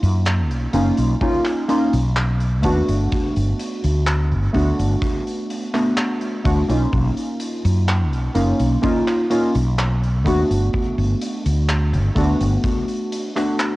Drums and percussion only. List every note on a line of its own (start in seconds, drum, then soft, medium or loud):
0.04 closed hi-hat medium
0.26 clap loud
0.26 closed hi-hat medium
0.51 closed hi-hat soft
0.73 closed hi-hat loud
0.97 closed hi-hat medium
1.21 kick loud
1.21 closed hi-hat medium
1.45 clap soft
1.45 closed hi-hat soft
1.69 closed hi-hat medium
1.93 closed hi-hat medium
2.16 clap loud
2.16 closed hi-hat medium
2.40 closed hi-hat soft
2.63 kick medium
2.63 closed hi-hat loud
2.88 closed hi-hat medium
3.12 kick loud
3.12 closed hi-hat medium
3.36 closed hi-hat soft
3.60 closed hi-hat medium
3.84 closed hi-hat medium
4.06 clap loud
4.06 closed hi-hat medium
4.32 closed hi-hat soft
4.54 kick medium
4.54 closed hi-hat medium
4.80 closed hi-hat medium
5.02 kick loud
5.02 closed hi-hat medium
5.27 closed hi-hat soft
5.50 closed hi-hat medium
5.75 clap soft
5.75 closed hi-hat medium
5.97 clap loud
5.97 closed hi-hat medium
6.21 closed hi-hat soft
6.45 kick loud
6.45 closed hi-hat loud
6.70 closed hi-hat medium
6.93 kick loud
6.93 closed hi-hat medium
7.17 closed hi-hat soft
7.40 closed hi-hat loud
7.65 closed hi-hat medium
7.88 clap loud
7.88 closed hi-hat medium
8.13 closed hi-hat soft
8.35 closed hi-hat medium
8.60 closed hi-hat medium
8.83 kick loud
8.83 closed hi-hat medium
9.07 clap soft
9.07 closed hi-hat soft
9.31 closed hi-hat medium
9.55 closed hi-hat medium
9.78 clap loud
9.78 closed hi-hat medium
10.04 closed hi-hat soft
10.26 kick medium
10.26 closed hi-hat loud
10.51 closed hi-hat medium
10.73 kick loud
10.73 closed hi-hat medium
10.98 closed hi-hat soft
11.21 closed hi-hat loud
11.46 closed hi-hat medium
11.69 clap loud
11.69 closed hi-hat medium
11.94 closed hi-hat soft
12.16 kick medium
12.16 closed hi-hat medium
12.41 closed hi-hat medium
12.64 kick loud
12.64 closed hi-hat medium
12.88 closed hi-hat soft
13.12 closed hi-hat loud
13.37 clap soft
13.37 closed hi-hat medium
13.59 clap loud
13.59 closed hi-hat medium